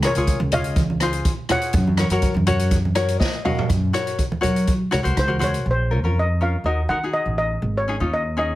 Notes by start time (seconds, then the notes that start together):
0.03 F4 G#4 A#4 C#5, cross-stick, closed hi-hat
0.07 C#5
0.15 C#2 F4 G#4 C#5, closed hi-hat
0.27 kick, closed hi-hat
0.40 C#2, high conga
0.52 F4 G#4 C#5 D#5 F5, closed hi-hat, low conga
0.64 closed hi-hat
0.76 kick, closed hi-hat, high conga
0.90 high conga
1.00 F4 G#4 C5, cross-stick, closed hi-hat
1.13 closed hi-hat
1.25 kick, closed hi-hat
1.49 F4 G#4 C#5 F#5, cross-stick, closed hi-hat, low conga
1.61 closed hi-hat
1.73 F#2, kick, closed hi-hat, low conga
1.88 high conga
1.97 F#4 A#4 C#5, cross-stick, closed hi-hat, high conga
2.10 F#2 F#4 A#4 C#5, closed hi-hat
2.22 kick, closed hi-hat
2.34 F#2, high conga
2.47 F#4 A#4 C#5, closed hi-hat, low conga
2.59 closed hi-hat
2.71 kick, closed hi-hat
2.85 high conga
2.95 F#4 A#4 C#5, cross-stick, closed hi-hat
3.08 closed hi-hat
3.20 D#5, kick, snare
3.45 F#4 A#4 D#5 F5, mid tom, low conga
3.59 floor tom
3.69 F#2, kick, closed hi-hat
3.93 F#4 A#4 C#5, cross-stick, closed hi-hat
4.07 closed hi-hat
4.19 kick, closed hi-hat
4.32 high conga
4.41 F#3 F#4 A#4 C#5, closed hi-hat, low conga
4.56 closed hi-hat
4.67 kick, closed hi-hat
4.91 C#2 F#4 A#4 C#5, cross-stick, closed hi-hat
5.03 C#2 F#4 A#4 C5, closed hi-hat
5.17 C#2 C5, kick, cross-stick, closed hi-hat
5.28 F#4 A#4 C5, high conga
5.39 F#4 A#4 C5, closed hi-hat, low conga
5.44 C#5
5.54 closed hi-hat
5.66 A#1
5.71 C5
5.91 C#4 F4 A#4
6.03 F2 C#4 F4 A#4
6.19 D#5
6.41 C#4 F4 A#4 F5
6.64 D#2 D#4 F#4 A#4 D#5
6.89 D#3 D#4 F#4 A#4 F#5
7.03 D#4 F#4 G#4
7.13 D#5
7.26 A1
7.38 D#5
7.62 G#1
7.77 C#5
7.88 C#4 D#4 G#4
8.00 D#2 C#4 D#4 F4
8.13 D#5
8.37 C#4 D#4 G#4 D#5